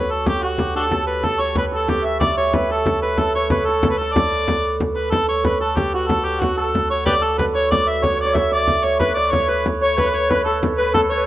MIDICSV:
0, 0, Header, 1, 6, 480
1, 0, Start_track
1, 0, Key_signature, 2, "major"
1, 0, Tempo, 323276
1, 392, Time_signature, 6, 3, 24, 8
1, 16729, End_track
2, 0, Start_track
2, 0, Title_t, "Hammered dulcimer"
2, 0, Program_c, 0, 15
2, 0, Note_on_c, 0, 66, 60
2, 0, Note_on_c, 0, 69, 70
2, 0, Note_on_c, 0, 71, 52
2, 0, Note_on_c, 0, 73, 75
2, 385, Note_on_c, 0, 67, 64
2, 474, Note_off_c, 0, 66, 0
2, 625, Note_on_c, 0, 66, 62
2, 714, Note_off_c, 0, 67, 0
2, 882, Note_on_c, 0, 67, 67
2, 971, Note_off_c, 0, 66, 0
2, 1118, Note_off_c, 0, 69, 0
2, 1124, Note_on_c, 0, 69, 73
2, 1352, Note_off_c, 0, 69, 0
2, 1358, Note_on_c, 0, 69, 66
2, 1833, Note_off_c, 0, 69, 0
2, 1839, Note_on_c, 0, 69, 76
2, 2057, Note_off_c, 0, 73, 0
2, 2063, Note_on_c, 0, 73, 75
2, 2320, Note_off_c, 0, 71, 0
2, 2326, Note_on_c, 0, 71, 73
2, 2552, Note_off_c, 0, 69, 0
2, 2558, Note_on_c, 0, 69, 71
2, 2795, Note_off_c, 0, 67, 0
2, 2801, Note_on_c, 0, 67, 65
2, 3041, Note_on_c, 0, 76, 78
2, 3288, Note_on_c, 0, 74, 76
2, 3377, Note_off_c, 0, 73, 0
2, 3527, Note_on_c, 0, 73, 75
2, 3616, Note_off_c, 0, 74, 0
2, 4008, Note_off_c, 0, 69, 0
2, 4014, Note_on_c, 0, 69, 73
2, 4494, Note_off_c, 0, 71, 0
2, 4500, Note_on_c, 0, 71, 67
2, 4735, Note_off_c, 0, 69, 0
2, 4741, Note_on_c, 0, 69, 72
2, 4977, Note_off_c, 0, 73, 0
2, 4983, Note_on_c, 0, 73, 73
2, 5213, Note_off_c, 0, 71, 0
2, 5219, Note_on_c, 0, 71, 72
2, 5470, Note_off_c, 0, 69, 0
2, 5476, Note_on_c, 0, 69, 79
2, 5951, Note_off_c, 0, 69, 0
2, 5957, Note_on_c, 0, 69, 71
2, 6179, Note_on_c, 0, 74, 67
2, 6269, Note_off_c, 0, 73, 0
2, 6452, Note_off_c, 0, 76, 0
2, 7352, Note_off_c, 0, 71, 0
2, 7357, Note_on_c, 0, 71, 66
2, 7461, Note_off_c, 0, 67, 0
2, 7601, Note_off_c, 0, 69, 0
2, 7607, Note_on_c, 0, 69, 62
2, 7841, Note_on_c, 0, 73, 68
2, 7930, Note_off_c, 0, 74, 0
2, 8069, Note_off_c, 0, 71, 0
2, 8075, Note_on_c, 0, 71, 66
2, 8317, Note_off_c, 0, 69, 0
2, 8323, Note_on_c, 0, 69, 77
2, 8573, Note_on_c, 0, 67, 63
2, 8818, Note_on_c, 0, 66, 66
2, 8907, Note_off_c, 0, 67, 0
2, 9038, Note_off_c, 0, 69, 0
2, 9044, Note_on_c, 0, 69, 75
2, 9518, Note_off_c, 0, 66, 0
2, 9524, Note_on_c, 0, 66, 69
2, 9754, Note_off_c, 0, 69, 0
2, 9760, Note_on_c, 0, 69, 80
2, 10241, Note_off_c, 0, 73, 0
2, 10247, Note_on_c, 0, 73, 76
2, 10486, Note_on_c, 0, 74, 76
2, 10575, Note_off_c, 0, 73, 0
2, 10714, Note_off_c, 0, 69, 0
2, 10720, Note_on_c, 0, 69, 73
2, 10952, Note_off_c, 0, 71, 0
2, 10958, Note_on_c, 0, 71, 73
2, 11205, Note_on_c, 0, 73, 79
2, 11295, Note_off_c, 0, 74, 0
2, 11456, Note_on_c, 0, 74, 72
2, 11545, Note_off_c, 0, 73, 0
2, 11906, Note_on_c, 0, 73, 75
2, 11995, Note_off_c, 0, 74, 0
2, 12068, Note_off_c, 0, 73, 0
2, 12074, Note_on_c, 0, 73, 68
2, 12247, Note_off_c, 0, 73, 0
2, 12253, Note_on_c, 0, 73, 78
2, 12408, Note_on_c, 0, 76, 81
2, 12644, Note_on_c, 0, 74, 82
2, 12733, Note_off_c, 0, 73, 0
2, 13124, Note_on_c, 0, 73, 71
2, 13214, Note_off_c, 0, 74, 0
2, 13348, Note_off_c, 0, 71, 0
2, 13354, Note_on_c, 0, 71, 70
2, 13614, Note_on_c, 0, 74, 76
2, 13704, Note_off_c, 0, 73, 0
2, 13836, Note_on_c, 0, 73, 76
2, 13925, Note_off_c, 0, 74, 0
2, 14073, Note_off_c, 0, 71, 0
2, 14079, Note_on_c, 0, 71, 77
2, 14348, Note_off_c, 0, 66, 0
2, 14560, Note_off_c, 0, 73, 0
2, 14566, Note_on_c, 0, 73, 76
2, 14805, Note_off_c, 0, 71, 0
2, 14811, Note_on_c, 0, 71, 77
2, 14910, Note_off_c, 0, 71, 0
2, 14916, Note_on_c, 0, 71, 72
2, 15047, Note_off_c, 0, 73, 0
2, 15053, Note_on_c, 0, 73, 76
2, 15067, Note_off_c, 0, 69, 0
2, 15295, Note_off_c, 0, 71, 0
2, 15301, Note_on_c, 0, 71, 72
2, 15527, Note_on_c, 0, 69, 76
2, 15819, Note_off_c, 0, 76, 0
2, 16010, Note_off_c, 0, 71, 0
2, 16016, Note_on_c, 0, 71, 73
2, 16233, Note_off_c, 0, 69, 0
2, 16239, Note_on_c, 0, 69, 69
2, 16495, Note_off_c, 0, 73, 0
2, 16501, Note_on_c, 0, 73, 76
2, 16711, Note_off_c, 0, 71, 0
2, 16729, Note_off_c, 0, 69, 0
2, 16729, Note_off_c, 0, 73, 0
2, 16729, End_track
3, 0, Start_track
3, 0, Title_t, "Harmonica"
3, 0, Program_c, 1, 22
3, 0, Note_on_c, 1, 71, 81
3, 170, Note_on_c, 1, 69, 77
3, 192, Note_off_c, 1, 71, 0
3, 401, Note_off_c, 1, 69, 0
3, 415, Note_on_c, 1, 67, 88
3, 631, Note_on_c, 1, 66, 81
3, 654, Note_off_c, 1, 67, 0
3, 1114, Note_off_c, 1, 66, 0
3, 1127, Note_on_c, 1, 62, 59
3, 1127, Note_on_c, 1, 66, 59
3, 1127, Note_on_c, 1, 69, 84
3, 1226, Note_off_c, 1, 66, 0
3, 1246, Note_off_c, 1, 62, 0
3, 1569, Note_off_c, 1, 69, 0
3, 1583, Note_on_c, 1, 71, 84
3, 1854, Note_on_c, 1, 69, 94
3, 1876, Note_off_c, 1, 71, 0
3, 2085, Note_on_c, 1, 73, 84
3, 2107, Note_off_c, 1, 69, 0
3, 2322, Note_off_c, 1, 73, 0
3, 2347, Note_on_c, 1, 71, 78
3, 2449, Note_off_c, 1, 71, 0
3, 2581, Note_on_c, 1, 69, 81
3, 2819, Note_on_c, 1, 67, 80
3, 2841, Note_off_c, 1, 69, 0
3, 3045, Note_on_c, 1, 76, 89
3, 3067, Note_off_c, 1, 67, 0
3, 3266, Note_off_c, 1, 76, 0
3, 3275, Note_on_c, 1, 74, 93
3, 3501, Note_off_c, 1, 74, 0
3, 3524, Note_on_c, 1, 73, 81
3, 3781, Note_on_c, 1, 71, 78
3, 3803, Note_off_c, 1, 73, 0
3, 4031, Note_on_c, 1, 69, 83
3, 4053, Note_off_c, 1, 71, 0
3, 4478, Note_off_c, 1, 69, 0
3, 4487, Note_on_c, 1, 71, 84
3, 4741, Note_on_c, 1, 69, 96
3, 4763, Note_off_c, 1, 71, 0
3, 4962, Note_off_c, 1, 69, 0
3, 4971, Note_on_c, 1, 73, 79
3, 5191, Note_off_c, 1, 73, 0
3, 5205, Note_on_c, 1, 71, 73
3, 5422, Note_on_c, 1, 69, 81
3, 5444, Note_off_c, 1, 71, 0
3, 5785, Note_off_c, 1, 69, 0
3, 5794, Note_on_c, 1, 71, 75
3, 5910, Note_on_c, 1, 69, 85
3, 5933, Note_off_c, 1, 71, 0
3, 6137, Note_on_c, 1, 74, 97
3, 6159, Note_off_c, 1, 69, 0
3, 7113, Note_off_c, 1, 74, 0
3, 7340, Note_on_c, 1, 71, 77
3, 7576, Note_off_c, 1, 71, 0
3, 7585, Note_on_c, 1, 69, 94
3, 7819, Note_off_c, 1, 69, 0
3, 7845, Note_on_c, 1, 73, 79
3, 8070, Note_off_c, 1, 73, 0
3, 8097, Note_on_c, 1, 71, 75
3, 8316, Note_off_c, 1, 71, 0
3, 8326, Note_on_c, 1, 69, 77
3, 8561, Note_on_c, 1, 67, 75
3, 8583, Note_off_c, 1, 69, 0
3, 8805, Note_off_c, 1, 67, 0
3, 8821, Note_on_c, 1, 66, 83
3, 9027, Note_on_c, 1, 69, 94
3, 9050, Note_off_c, 1, 66, 0
3, 9275, Note_on_c, 1, 67, 82
3, 9297, Note_off_c, 1, 69, 0
3, 9516, Note_on_c, 1, 66, 80
3, 9538, Note_off_c, 1, 67, 0
3, 9758, Note_on_c, 1, 69, 81
3, 9780, Note_off_c, 1, 66, 0
3, 10243, Note_off_c, 1, 69, 0
3, 10255, Note_on_c, 1, 73, 88
3, 10470, Note_off_c, 1, 73, 0
3, 10479, Note_on_c, 1, 67, 75
3, 10479, Note_on_c, 1, 71, 75
3, 10479, Note_on_c, 1, 74, 107
3, 10592, Note_off_c, 1, 67, 0
3, 10596, Note_off_c, 1, 71, 0
3, 10743, Note_on_c, 1, 69, 89
3, 10765, Note_off_c, 1, 74, 0
3, 10954, Note_off_c, 1, 69, 0
3, 10962, Note_on_c, 1, 71, 82
3, 11072, Note_off_c, 1, 71, 0
3, 11214, Note_on_c, 1, 73, 91
3, 11434, Note_off_c, 1, 73, 0
3, 11448, Note_on_c, 1, 74, 97
3, 11704, Note_on_c, 1, 76, 91
3, 11726, Note_off_c, 1, 74, 0
3, 11934, Note_on_c, 1, 73, 96
3, 11956, Note_off_c, 1, 76, 0
3, 12170, Note_off_c, 1, 73, 0
3, 12193, Note_on_c, 1, 74, 85
3, 12409, Note_on_c, 1, 76, 88
3, 12431, Note_off_c, 1, 74, 0
3, 12647, Note_off_c, 1, 76, 0
3, 12667, Note_on_c, 1, 74, 96
3, 13129, Note_on_c, 1, 73, 87
3, 13152, Note_off_c, 1, 74, 0
3, 13341, Note_off_c, 1, 73, 0
3, 13350, Note_on_c, 1, 71, 95
3, 13569, Note_off_c, 1, 71, 0
3, 13578, Note_on_c, 1, 74, 83
3, 13829, Note_on_c, 1, 73, 84
3, 13851, Note_off_c, 1, 74, 0
3, 14090, Note_on_c, 1, 71, 83
3, 14113, Note_off_c, 1, 73, 0
3, 14325, Note_off_c, 1, 71, 0
3, 14594, Note_on_c, 1, 73, 91
3, 14815, Note_on_c, 1, 71, 90
3, 14837, Note_off_c, 1, 73, 0
3, 14861, Note_on_c, 1, 73, 81
3, 14883, Note_off_c, 1, 71, 0
3, 14928, Note_on_c, 1, 71, 95
3, 14950, Note_off_c, 1, 73, 0
3, 15050, Note_on_c, 1, 73, 79
3, 15072, Note_off_c, 1, 71, 0
3, 15284, Note_off_c, 1, 73, 0
3, 15300, Note_on_c, 1, 71, 80
3, 15493, Note_off_c, 1, 71, 0
3, 15502, Note_on_c, 1, 69, 81
3, 15732, Note_off_c, 1, 69, 0
3, 16006, Note_on_c, 1, 71, 84
3, 16223, Note_off_c, 1, 71, 0
3, 16247, Note_on_c, 1, 69, 91
3, 16352, Note_off_c, 1, 69, 0
3, 16484, Note_on_c, 1, 73, 82
3, 16701, Note_off_c, 1, 73, 0
3, 16729, End_track
4, 0, Start_track
4, 0, Title_t, "Recorder"
4, 0, Program_c, 2, 74
4, 13365, Note_on_c, 2, 71, 73
4, 13611, Note_on_c, 2, 74, 78
4, 13633, Note_off_c, 2, 71, 0
4, 13846, Note_off_c, 2, 74, 0
4, 13858, Note_on_c, 2, 73, 78
4, 14083, Note_on_c, 2, 71, 69
4, 14106, Note_off_c, 2, 73, 0
4, 14322, Note_off_c, 2, 71, 0
4, 14566, Note_on_c, 2, 73, 74
4, 14803, Note_on_c, 2, 71, 74
4, 14826, Note_off_c, 2, 73, 0
4, 15023, Note_off_c, 2, 71, 0
4, 15032, Note_on_c, 2, 73, 80
4, 15274, Note_on_c, 2, 71, 70
4, 15296, Note_off_c, 2, 73, 0
4, 15495, Note_off_c, 2, 71, 0
4, 15504, Note_on_c, 2, 69, 67
4, 15593, Note_off_c, 2, 69, 0
4, 15986, Note_on_c, 2, 71, 67
4, 16213, Note_off_c, 2, 71, 0
4, 16226, Note_on_c, 2, 69, 68
4, 16467, Note_on_c, 2, 73, 77
4, 16490, Note_off_c, 2, 69, 0
4, 16583, Note_on_c, 2, 71, 65
4, 16606, Note_off_c, 2, 73, 0
4, 16707, Note_off_c, 2, 71, 0
4, 16729, End_track
5, 0, Start_track
5, 0, Title_t, "Pipe organ"
5, 0, Program_c, 3, 19
5, 0, Note_on_c, 3, 38, 53
5, 1818, Note_off_c, 3, 38, 0
5, 1847, Note_on_c, 3, 38, 51
5, 7591, Note_off_c, 3, 38, 0
5, 7620, Note_on_c, 3, 38, 58
5, 13336, Note_off_c, 3, 38, 0
5, 13366, Note_on_c, 3, 38, 52
5, 16729, Note_off_c, 3, 38, 0
5, 16729, End_track
6, 0, Start_track
6, 0, Title_t, "Frame drum"
6, 392, Note_on_c, 9, 64, 80
6, 540, Note_off_c, 9, 64, 0
6, 641, Note_on_c, 9, 64, 28
6, 790, Note_off_c, 9, 64, 0
6, 864, Note_on_c, 9, 64, 78
6, 1012, Note_off_c, 9, 64, 0
6, 1116, Note_on_c, 9, 64, 24
6, 1265, Note_off_c, 9, 64, 0
6, 1355, Note_on_c, 9, 64, 73
6, 1504, Note_off_c, 9, 64, 0
6, 1834, Note_on_c, 9, 64, 70
6, 1982, Note_off_c, 9, 64, 0
6, 2083, Note_on_c, 9, 64, 24
6, 2231, Note_off_c, 9, 64, 0
6, 2309, Note_on_c, 9, 64, 74
6, 2457, Note_off_c, 9, 64, 0
6, 2797, Note_on_c, 9, 64, 77
6, 2945, Note_off_c, 9, 64, 0
6, 3046, Note_on_c, 9, 64, 27
6, 3194, Note_off_c, 9, 64, 0
6, 3280, Note_on_c, 9, 64, 91
6, 3428, Note_off_c, 9, 64, 0
6, 3763, Note_on_c, 9, 64, 79
6, 3911, Note_off_c, 9, 64, 0
6, 4242, Note_on_c, 9, 64, 81
6, 4390, Note_off_c, 9, 64, 0
6, 4716, Note_on_c, 9, 64, 76
6, 4864, Note_off_c, 9, 64, 0
6, 5200, Note_on_c, 9, 64, 87
6, 5348, Note_off_c, 9, 64, 0
6, 5685, Note_on_c, 9, 64, 87
6, 5834, Note_off_c, 9, 64, 0
6, 5932, Note_on_c, 9, 64, 28
6, 6080, Note_off_c, 9, 64, 0
6, 6174, Note_on_c, 9, 64, 91
6, 6323, Note_off_c, 9, 64, 0
6, 6418, Note_on_c, 9, 64, 31
6, 6566, Note_off_c, 9, 64, 0
6, 6647, Note_on_c, 9, 64, 81
6, 6796, Note_off_c, 9, 64, 0
6, 6890, Note_on_c, 9, 64, 27
6, 7038, Note_off_c, 9, 64, 0
6, 7133, Note_on_c, 9, 64, 77
6, 7281, Note_off_c, 9, 64, 0
6, 7373, Note_on_c, 9, 64, 24
6, 7522, Note_off_c, 9, 64, 0
6, 7607, Note_on_c, 9, 64, 82
6, 7755, Note_off_c, 9, 64, 0
6, 8084, Note_on_c, 9, 64, 81
6, 8232, Note_off_c, 9, 64, 0
6, 8564, Note_on_c, 9, 64, 79
6, 8713, Note_off_c, 9, 64, 0
6, 8821, Note_on_c, 9, 64, 26
6, 8970, Note_off_c, 9, 64, 0
6, 9049, Note_on_c, 9, 64, 81
6, 9197, Note_off_c, 9, 64, 0
6, 9301, Note_on_c, 9, 64, 28
6, 9449, Note_off_c, 9, 64, 0
6, 9526, Note_on_c, 9, 64, 84
6, 9675, Note_off_c, 9, 64, 0
6, 10017, Note_on_c, 9, 64, 75
6, 10166, Note_off_c, 9, 64, 0
6, 10489, Note_on_c, 9, 64, 79
6, 10637, Note_off_c, 9, 64, 0
6, 10736, Note_on_c, 9, 64, 25
6, 10885, Note_off_c, 9, 64, 0
6, 10975, Note_on_c, 9, 64, 81
6, 11124, Note_off_c, 9, 64, 0
6, 11461, Note_on_c, 9, 64, 78
6, 11609, Note_off_c, 9, 64, 0
6, 11694, Note_on_c, 9, 64, 24
6, 11842, Note_off_c, 9, 64, 0
6, 11929, Note_on_c, 9, 64, 77
6, 12078, Note_off_c, 9, 64, 0
6, 12175, Note_on_c, 9, 64, 28
6, 12323, Note_off_c, 9, 64, 0
6, 12399, Note_on_c, 9, 64, 81
6, 12547, Note_off_c, 9, 64, 0
6, 12882, Note_on_c, 9, 64, 75
6, 13030, Note_off_c, 9, 64, 0
6, 13365, Note_on_c, 9, 64, 79
6, 13514, Note_off_c, 9, 64, 0
6, 13853, Note_on_c, 9, 64, 76
6, 14001, Note_off_c, 9, 64, 0
6, 14339, Note_on_c, 9, 64, 74
6, 14487, Note_off_c, 9, 64, 0
6, 14591, Note_on_c, 9, 64, 25
6, 14739, Note_off_c, 9, 64, 0
6, 14819, Note_on_c, 9, 64, 78
6, 14968, Note_off_c, 9, 64, 0
6, 15060, Note_on_c, 9, 64, 28
6, 15208, Note_off_c, 9, 64, 0
6, 15299, Note_on_c, 9, 64, 77
6, 15447, Note_off_c, 9, 64, 0
6, 15779, Note_on_c, 9, 64, 81
6, 15928, Note_off_c, 9, 64, 0
6, 16015, Note_on_c, 9, 64, 25
6, 16164, Note_off_c, 9, 64, 0
6, 16249, Note_on_c, 9, 64, 88
6, 16398, Note_off_c, 9, 64, 0
6, 16500, Note_on_c, 9, 64, 29
6, 16648, Note_off_c, 9, 64, 0
6, 16729, End_track
0, 0, End_of_file